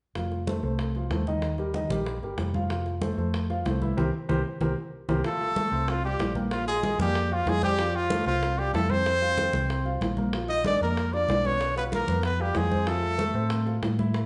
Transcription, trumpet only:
0, 0, Header, 1, 2, 480
1, 0, Start_track
1, 0, Tempo, 317965
1, 231, Time_signature, 4, 2, 24, 8
1, 21522, End_track
2, 0, Start_track
2, 0, Title_t, "Trumpet"
2, 0, Program_c, 0, 56
2, 7951, Note_on_c, 0, 69, 92
2, 8903, Note_on_c, 0, 65, 80
2, 8925, Note_off_c, 0, 69, 0
2, 9130, Note_off_c, 0, 65, 0
2, 9136, Note_on_c, 0, 67, 79
2, 9573, Note_off_c, 0, 67, 0
2, 9845, Note_on_c, 0, 65, 85
2, 10064, Note_off_c, 0, 65, 0
2, 10081, Note_on_c, 0, 68, 81
2, 10524, Note_off_c, 0, 68, 0
2, 10585, Note_on_c, 0, 67, 89
2, 11072, Note_on_c, 0, 65, 80
2, 11095, Note_off_c, 0, 67, 0
2, 11311, Note_on_c, 0, 68, 93
2, 11333, Note_off_c, 0, 65, 0
2, 11526, Note_off_c, 0, 68, 0
2, 11535, Note_on_c, 0, 67, 87
2, 12015, Note_on_c, 0, 65, 88
2, 12038, Note_off_c, 0, 67, 0
2, 12469, Note_off_c, 0, 65, 0
2, 12479, Note_on_c, 0, 65, 84
2, 12962, Note_on_c, 0, 67, 82
2, 12984, Note_off_c, 0, 65, 0
2, 13184, Note_off_c, 0, 67, 0
2, 13193, Note_on_c, 0, 69, 86
2, 13439, Note_on_c, 0, 72, 101
2, 13462, Note_off_c, 0, 69, 0
2, 15352, Note_off_c, 0, 72, 0
2, 15838, Note_on_c, 0, 75, 90
2, 16056, Note_off_c, 0, 75, 0
2, 16098, Note_on_c, 0, 74, 94
2, 16307, Note_off_c, 0, 74, 0
2, 16349, Note_on_c, 0, 70, 86
2, 16806, Note_on_c, 0, 74, 99
2, 16828, Note_off_c, 0, 70, 0
2, 17302, Note_on_c, 0, 73, 95
2, 17325, Note_off_c, 0, 74, 0
2, 17765, Note_off_c, 0, 73, 0
2, 17776, Note_on_c, 0, 71, 80
2, 17877, Note_off_c, 0, 71, 0
2, 18030, Note_on_c, 0, 70, 84
2, 18457, Note_off_c, 0, 70, 0
2, 18490, Note_on_c, 0, 71, 80
2, 18741, Note_on_c, 0, 67, 79
2, 18764, Note_off_c, 0, 71, 0
2, 18975, Note_on_c, 0, 68, 90
2, 18998, Note_off_c, 0, 67, 0
2, 19451, Note_on_c, 0, 69, 89
2, 19473, Note_off_c, 0, 68, 0
2, 20880, Note_off_c, 0, 69, 0
2, 21522, End_track
0, 0, End_of_file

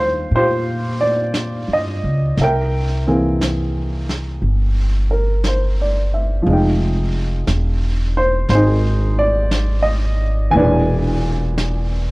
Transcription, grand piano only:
0, 0, Header, 1, 2, 480
1, 0, Start_track
1, 0, Tempo, 1023891
1, 1113, Time_signature, 4, 2, 24, 8
1, 5677, End_track
2, 0, Start_track
2, 0, Title_t, "Grand piano"
2, 0, Program_c, 0, 0
2, 0, Control_c, 0, 64, 127
2, 0, Note_on_c, 0, 51, 44
2, 0, Note_on_c, 0, 55, 37
2, 0, Note_on_c, 0, 60, 37
2, 0, Note_on_c, 0, 65, 48
2, 0, Note_on_c, 0, 72, 65
2, 156, Note_off_c, 0, 72, 0
2, 159, Note_off_c, 0, 65, 0
2, 165, Note_on_c, 0, 67, 48
2, 166, Note_on_c, 0, 65, 53
2, 167, Note_on_c, 0, 72, 77
2, 460, Note_off_c, 0, 72, 0
2, 472, Note_on_c, 0, 74, 78
2, 801, Note_off_c, 0, 74, 0
2, 813, Note_on_c, 0, 75, 66
2, 1103, Note_off_c, 0, 51, 0
2, 1103, Note_off_c, 0, 67, 0
2, 1104, Note_off_c, 0, 65, 0
2, 1113, Note_off_c, 0, 55, 0
2, 1120, Control_c, 0, 64, 0
2, 1122, Note_off_c, 0, 60, 0
2, 1129, Note_on_c, 0, 76, 56
2, 1133, Note_on_c, 0, 70, 58
2, 1134, Note_off_c, 0, 75, 0
2, 1142, Note_on_c, 0, 79, 81
2, 1211, Control_c, 0, 64, 127
2, 1438, Note_on_c, 0, 52, 43
2, 1438, Note_on_c, 0, 58, 38
2, 1439, Note_on_c, 0, 60, 40
2, 1445, Note_on_c, 0, 68, 42
2, 2388, Note_off_c, 0, 70, 0
2, 2395, Note_on_c, 0, 70, 40
2, 2566, Note_on_c, 0, 72, 46
2, 2638, Note_off_c, 0, 70, 0
2, 2726, Note_on_c, 0, 74, 47
2, 2853, Note_off_c, 0, 72, 0
2, 2853, Note_off_c, 0, 76, 0
2, 2859, Note_off_c, 0, 79, 0
2, 2878, Note_on_c, 0, 76, 42
2, 2963, Note_off_c, 0, 74, 0
2, 3011, Note_on_c, 0, 53, 51
2, 3027, Note_off_c, 0, 52, 0
2, 3027, Note_off_c, 0, 58, 0
2, 3027, Note_off_c, 0, 60, 0
2, 3027, Note_on_c, 0, 56, 46
2, 3030, Note_off_c, 0, 68, 0
2, 3030, Control_c, 0, 64, 0
2, 3045, Note_on_c, 0, 63, 45
2, 3061, Note_on_c, 0, 79, 55
2, 3115, Control_c, 0, 64, 127
2, 3117, Note_off_c, 0, 76, 0
2, 3831, Note_on_c, 0, 72, 72
2, 3978, Note_off_c, 0, 72, 0
2, 3985, Note_on_c, 0, 72, 74
2, 4002, Note_off_c, 0, 63, 0
2, 4007, Note_on_c, 0, 68, 54
2, 4009, Note_on_c, 0, 63, 56
2, 4307, Note_on_c, 0, 74, 81
2, 4312, Note_off_c, 0, 72, 0
2, 4606, Note_on_c, 0, 75, 69
2, 4607, Note_off_c, 0, 74, 0
2, 4924, Note_on_c, 0, 52, 50
2, 4928, Note_on_c, 0, 80, 85
2, 4936, Note_on_c, 0, 46, 43
2, 4937, Note_off_c, 0, 53, 0
2, 4940, Note_off_c, 0, 63, 0
2, 4940, Note_off_c, 0, 68, 0
2, 4945, Note_off_c, 0, 56, 0
2, 4946, Note_off_c, 0, 75, 0
2, 4949, Control_c, 0, 64, 0
2, 4954, Note_on_c, 0, 74, 65
2, 4956, Note_on_c, 0, 62, 42
2, 4956, Note_on_c, 0, 71, 62
2, 4963, Note_off_c, 0, 79, 0
2, 4974, Note_on_c, 0, 68, 56
2, 5044, Control_c, 0, 64, 127
2, 5677, Note_off_c, 0, 46, 0
2, 5677, Note_off_c, 0, 52, 0
2, 5677, Note_off_c, 0, 62, 0
2, 5677, Note_off_c, 0, 68, 0
2, 5677, Note_off_c, 0, 71, 0
2, 5677, Note_off_c, 0, 74, 0
2, 5677, Note_off_c, 0, 80, 0
2, 5677, End_track
0, 0, End_of_file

